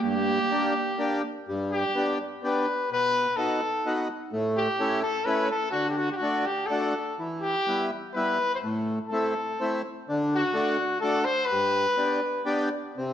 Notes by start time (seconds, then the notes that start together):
0.01 G2 A#3 G4
0.51 A#3 D4 G4
0.98 A#3 D4 G4
1.48 G2
1.72 G4
1.95 B3 D4 G4
2.43 B3 D4 G4 B4
2.91 B2 B4
3.36 B3 D#4 F#4 A4
3.86 B3 D#4 F#4
4.32 A2
4.56 G4
4.80 A3 C#4 E4
5.02 A4
5.25 A3 C#4 E4 B4
5.50 A4
5.71 D3 F#4
5.90 G4
5.97 F#4
6.12 G4
6.16 F#4
6.21 A3 D4 F#4
6.46 G4
6.66 A3 A4
6.70 D4 F#4
7.19 E3
7.41 G4
7.67 G3 B3 E4
8.14 G3 B3 E4 B4
8.54 C5
8.63 A2
9.07 A3 A4
9.13 C4 E4
9.60 A3 C4 E4
10.09 D3
10.34 F#4
10.54 A3 D4 F#4
11.01 A3 D4 F#4 A4
11.24 C5
11.45 B4
11.51 G2
11.97 B3 D4 G4
12.45 B3 D4 G4
12.97 C3